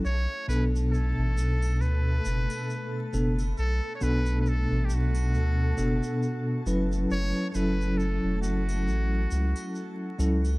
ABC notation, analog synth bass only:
X:1
M:4/4
L:1/16
Q:"Swing 16ths" 1/4=68
K:Bm
V:1 name="Analog synth bass" clef=bass
B,,, z B,,,3 A,,, B,,,2 D,,2 F,,, z3 F,,,2 | B,,, z B,,,3 A,,, B,,,2 D,,2 F,,, z3 F,,,2 | F,,, z F,,,3 E,,, F,,,2 A,,,2 C,, z3 C,,2 |]